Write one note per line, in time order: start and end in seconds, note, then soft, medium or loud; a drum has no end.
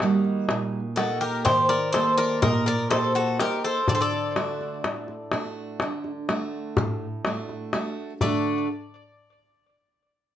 0.00 0.46 D#3 medium
0.00 0.79 G3 medium
0.00 0.79 A#3 medium
0.00 0.94 D#4 medium
0.00 0.79 D#4 soft
0.00 0.93 F#4 medium
0.00 darbuka tek medium
0.24 darbuka tek soft
0.49 1.44 A#2 medium
0.49 darbuka tek medium
0.96 1.75 A#3 medium
0.96 1.76 D#4 soft
0.96 1.20 F#4 medium
0.96 1.76 G4 medium
0.96 1.20 A4 medium
0.96 darbuka tek medium
1.21 1.44 G4 medium
1.21 1.44 A#4 medium
1.21 darbuka tek soft
1.45 2.40 D#3 medium
1.45 1.68 G4 medium
1.45 1.68 C5 loud
1.45 darbuka tek medium
1.45 darbuka dum medium
1.69 1.92 A#4 medium
1.69 1.92 D5 medium
1.69 darbuka tek soft
1.92 2.72 A#3 medium
1.92 2.73 D#4 soft
1.92 2.73 G4 medium
1.92 2.17 A4 medium
1.92 2.16 C5 loud
1.92 darbuka tek medium
2.17 2.41 A#4 medium
2.17 2.40 D5 loud
2.17 darbuka tek soft
2.42 3.37 A#2 medium
2.42 2.65 A#4 medium
2.42 2.67 D#5 medium
2.42 darbuka dum loud
2.66 2.89 A#4 medium
2.66 2.90 D5 loud
2.90 3.39 A#3 soft
2.90 3.39 D#4 soft
2.90 3.39 G4 soft
2.90 3.13 A4 medium
2.90 3.13 C5 medium
2.90 darbuka tek medium
3.15 3.37 F#4 medium
3.15 3.40 A4 medium
3.40 3.78 A#3 soft
3.40 3.79 D#4 soft
3.40 3.62 G4 medium
3.40 3.79 G4 medium
3.40 3.62 A#4 medium
3.40 darbuka tek medium
3.64 3.86 A4 medium
3.64 3.86 C5 medium
3.88 4.81 D3 medium
3.88 3.94 A4 medium
3.88 3.94 D5 medium
3.88 darbuka dum medium
3.95 3.99 A4 medium
3.95 4.01 C5 medium
4.01 7.69 A4 medium
4.01 7.70 D5 medium
4.13 darbuka tek soft
4.36 5.13 A3 medium
4.36 5.14 D4 soft
4.36 5.14 F#4 soft
4.36 darbuka tek medium
4.61 darbuka tek soft
4.84 5.78 A2 medium
4.84 darbuka tek medium
5.08 darbuka tek soft
5.32 6.10 A3 soft
5.32 6.10 D4 soft
5.32 6.10 F#4 medium
5.32 darbuka tek medium
5.80 6.75 D3 medium
5.80 darbuka tek medium
6.04 darbuka tek soft
6.29 7.06 A3 soft
6.29 7.06 D4 soft
6.29 7.07 F#4 medium
6.29 darbuka tek medium
6.77 7.71 A2 medium
6.77 darbuka dum loud
7.25 7.73 A3 soft
7.25 7.73 D4 soft
7.25 7.74 F#4 soft
7.25 darbuka tek medium
7.49 darbuka tek soft
7.73 8.12 A3 soft
7.73 8.13 D4 soft
7.73 8.13 F#4 medium
7.73 darbuka tek medium
8.21 8.67 D3 medium
8.21 8.66 A3 medium
8.21 8.67 A3 medium
8.21 8.68 D4 soft
8.21 8.68 F#4 soft
8.21 8.68 A4 medium
8.21 8.67 D5 medium
8.21 darbuka dum medium